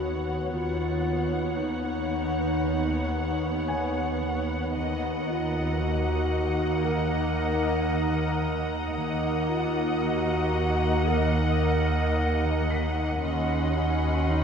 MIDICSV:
0, 0, Header, 1, 11, 480
1, 0, Start_track
1, 0, Key_signature, -6, "minor"
1, 0, Tempo, 1054482
1, 237, Time_signature, 4, 2, 24, 8
1, 3598, Tempo, 1065719
1, 6541, End_track
2, 0, Start_track
2, 0, Title_t, "Grand piano"
2, 0, Program_c, 0, 0
2, 0, Control_c, 0, 64, 127
2, 1677, Note_on_c, 0, 80, 56
2, 2173, Control_c, 0, 64, 0
2, 2255, Control_c, 0, 64, 127
2, 3099, Note_off_c, 0, 80, 0
2, 5760, Note_on_c, 0, 95, 47
2, 6004, Control_c, 0, 64, 0
2, 6091, Control_c, 0, 64, 127
2, 6541, Note_off_c, 0, 95, 0
2, 6541, End_track
3, 0, Start_track
3, 0, Title_t, "Violin section"
3, 0, Program_c, 1, 48
3, 2165, Note_on_c, 1, 82, 51
3, 2645, Note_on_c, 1, 87, 46
3, 5739, Note_off_c, 1, 82, 0
3, 5741, Note_off_c, 1, 87, 0
3, 5994, Note_on_c, 1, 84, 50
3, 5996, Note_on_c, 1, 83, 54
3, 6541, Note_off_c, 1, 83, 0
3, 6541, Note_off_c, 1, 84, 0
3, 6541, End_track
4, 0, Start_track
4, 0, Title_t, "Violin section"
4, 0, Program_c, 2, 48
4, 0, Note_on_c, 2, 78, 45
4, 219, Note_off_c, 2, 78, 0
4, 241, Note_on_c, 2, 78, 52
4, 2149, Note_off_c, 2, 78, 0
4, 2166, Note_on_c, 2, 78, 60
4, 4060, Note_off_c, 2, 78, 0
4, 4079, Note_on_c, 2, 78, 63
4, 5979, Note_off_c, 2, 78, 0
4, 5997, Note_on_c, 2, 78, 60
4, 6541, Note_off_c, 2, 78, 0
4, 6541, End_track
5, 0, Start_track
5, 0, Title_t, "Violin section"
5, 0, Program_c, 3, 48
5, 0, Note_on_c, 3, 73, 43
5, 220, Note_off_c, 3, 73, 0
5, 240, Note_on_c, 3, 73, 46
5, 2149, Note_off_c, 3, 73, 0
5, 2168, Note_on_c, 3, 75, 51
5, 4061, Note_off_c, 3, 75, 0
5, 4075, Note_on_c, 3, 75, 62
5, 5977, Note_off_c, 3, 75, 0
5, 6001, Note_on_c, 3, 75, 58
5, 6541, Note_off_c, 3, 75, 0
5, 6541, End_track
6, 0, Start_track
6, 0, Title_t, "Ambient pad"
6, 0, Program_c, 4, 92
6, 0, Note_on_c, 4, 66, 48
6, 0, Note_on_c, 4, 71, 45
6, 0, Note_on_c, 4, 73, 46
6, 218, Note_off_c, 4, 66, 0
6, 229, Note_off_c, 4, 71, 0
6, 229, Note_off_c, 4, 73, 0
6, 233, Note_on_c, 4, 63, 48
6, 235, Note_on_c, 4, 71, 45
6, 235, Note_on_c, 4, 73, 46
6, 2145, Note_off_c, 4, 63, 0
6, 2146, Note_off_c, 4, 71, 0
6, 2146, Note_off_c, 4, 73, 0
6, 2161, Note_on_c, 4, 63, 49
6, 2162, Note_on_c, 4, 70, 46
6, 2164, Note_on_c, 4, 75, 48
6, 4058, Note_off_c, 4, 63, 0
6, 4073, Note_off_c, 4, 75, 0
6, 4074, Note_off_c, 4, 70, 0
6, 4078, Note_on_c, 4, 63, 51
6, 4078, Note_on_c, 4, 75, 53
6, 4079, Note_on_c, 4, 70, 52
6, 5978, Note_off_c, 4, 63, 0
6, 5978, Note_off_c, 4, 75, 0
6, 5979, Note_off_c, 4, 70, 0
6, 5994, Note_on_c, 4, 73, 54
6, 5995, Note_on_c, 4, 66, 54
6, 5995, Note_on_c, 4, 75, 51
6, 6541, Note_off_c, 4, 66, 0
6, 6541, Note_off_c, 4, 73, 0
6, 6541, Note_off_c, 4, 75, 0
6, 6541, End_track
7, 0, Start_track
7, 0, Title_t, "Clarinet"
7, 0, Program_c, 5, 71
7, 0, Note_on_c, 5, 66, 65
7, 238, Note_off_c, 5, 66, 0
7, 240, Note_on_c, 5, 65, 75
7, 713, Note_on_c, 5, 63, 64
7, 720, Note_off_c, 5, 65, 0
7, 1923, Note_off_c, 5, 63, 0
7, 2405, Note_on_c, 5, 65, 68
7, 2639, Note_on_c, 5, 66, 70
7, 2646, Note_off_c, 5, 65, 0
7, 3118, Note_on_c, 5, 70, 81
7, 3125, Note_off_c, 5, 66, 0
7, 4077, Note_off_c, 5, 70, 0
7, 4314, Note_on_c, 5, 65, 71
7, 4556, Note_on_c, 5, 66, 77
7, 4563, Note_off_c, 5, 65, 0
7, 5036, Note_on_c, 5, 70, 86
7, 5042, Note_off_c, 5, 66, 0
7, 5994, Note_off_c, 5, 70, 0
7, 6235, Note_on_c, 5, 61, 77
7, 6479, Note_on_c, 5, 63, 80
7, 6486, Note_off_c, 5, 61, 0
7, 6541, Note_off_c, 5, 63, 0
7, 6541, End_track
8, 0, Start_track
8, 0, Title_t, "Viola section"
8, 0, Program_c, 6, 48
8, 0, Note_on_c, 6, 59, 41
8, 219, Note_off_c, 6, 59, 0
8, 236, Note_on_c, 6, 59, 47
8, 2623, Note_off_c, 6, 59, 0
8, 2640, Note_on_c, 6, 58, 63
8, 4071, Note_off_c, 6, 58, 0
8, 4077, Note_on_c, 6, 58, 64
8, 5978, Note_off_c, 6, 58, 0
8, 5998, Note_on_c, 6, 61, 61
8, 6541, Note_off_c, 6, 61, 0
8, 6541, End_track
9, 0, Start_track
9, 0, Title_t, "Harp"
9, 0, Program_c, 7, 46
9, 0, Note_on_c, 7, 51, 34
9, 0, Note_on_c, 7, 63, 40
9, 232, Note_off_c, 7, 51, 0
9, 237, Note_on_c, 7, 51, 53
9, 470, Note_off_c, 7, 63, 0
9, 476, Note_on_c, 7, 63, 45
9, 708, Note_off_c, 7, 51, 0
9, 714, Note_on_c, 7, 51, 43
9, 952, Note_off_c, 7, 63, 0
9, 958, Note_on_c, 7, 63, 46
9, 1190, Note_off_c, 7, 51, 0
9, 1196, Note_on_c, 7, 51, 66
9, 1431, Note_off_c, 7, 63, 0
9, 1436, Note_on_c, 7, 63, 45
9, 1677, Note_off_c, 7, 51, 0
9, 1682, Note_on_c, 7, 51, 45
9, 1919, Note_off_c, 7, 51, 0
9, 1925, Note_on_c, 7, 51, 45
9, 2160, Note_off_c, 7, 51, 0
9, 2165, Note_on_c, 7, 51, 67
9, 2398, Note_off_c, 7, 63, 0
9, 2404, Note_on_c, 7, 63, 53
9, 2636, Note_off_c, 7, 51, 0
9, 2641, Note_on_c, 7, 51, 50
9, 2873, Note_off_c, 7, 63, 0
9, 2879, Note_on_c, 7, 63, 48
9, 3114, Note_off_c, 7, 51, 0
9, 3120, Note_on_c, 7, 51, 70
9, 3353, Note_off_c, 7, 63, 0
9, 3359, Note_on_c, 7, 63, 51
9, 3594, Note_off_c, 7, 51, 0
9, 3599, Note_on_c, 7, 51, 59
9, 3832, Note_off_c, 7, 51, 0
9, 3837, Note_on_c, 7, 51, 50
9, 4070, Note_off_c, 7, 51, 0
9, 4076, Note_on_c, 7, 51, 75
9, 4313, Note_off_c, 7, 63, 0
9, 4319, Note_on_c, 7, 63, 55
9, 4554, Note_off_c, 7, 51, 0
9, 4559, Note_on_c, 7, 51, 54
9, 4799, Note_off_c, 7, 63, 0
9, 4804, Note_on_c, 7, 63, 58
9, 5039, Note_off_c, 7, 51, 0
9, 5045, Note_on_c, 7, 51, 83
9, 5280, Note_off_c, 7, 63, 0
9, 5285, Note_on_c, 7, 63, 50
9, 5515, Note_off_c, 7, 51, 0
9, 5521, Note_on_c, 7, 51, 54
9, 5756, Note_off_c, 7, 51, 0
9, 5761, Note_on_c, 7, 51, 50
9, 5993, Note_off_c, 7, 51, 0
9, 5998, Note_on_c, 7, 51, 68
9, 6235, Note_off_c, 7, 63, 0
9, 6240, Note_on_c, 7, 63, 53
9, 6478, Note_off_c, 7, 51, 0
9, 6483, Note_on_c, 7, 51, 49
9, 6541, Note_off_c, 7, 51, 0
9, 6541, Note_off_c, 7, 63, 0
9, 6541, End_track
10, 0, Start_track
10, 0, Title_t, "Cello section"
10, 0, Program_c, 8, 48
10, 0, Note_on_c, 8, 39, 39
10, 219, Note_off_c, 8, 39, 0
10, 239, Note_on_c, 8, 39, 46
10, 2148, Note_off_c, 8, 39, 0
10, 2167, Note_on_c, 8, 39, 55
10, 4061, Note_off_c, 8, 39, 0
10, 4076, Note_on_c, 8, 39, 63
10, 5977, Note_off_c, 8, 39, 0
10, 5998, Note_on_c, 8, 39, 62
10, 6541, Note_off_c, 8, 39, 0
10, 6541, End_track
11, 0, Start_track
11, 0, Title_t, "Double bass section"
11, 0, Program_c, 10, 48
11, 0, Note_on_c, 10, 39, 44
11, 219, Note_off_c, 10, 39, 0
11, 239, Note_on_c, 10, 39, 48
11, 2148, Note_off_c, 10, 39, 0
11, 2163, Note_on_c, 10, 39, 54
11, 4059, Note_off_c, 10, 39, 0
11, 4077, Note_on_c, 10, 39, 65
11, 5978, Note_off_c, 10, 39, 0
11, 5997, Note_on_c, 10, 39, 67
11, 6541, Note_off_c, 10, 39, 0
11, 6541, End_track
0, 0, End_of_file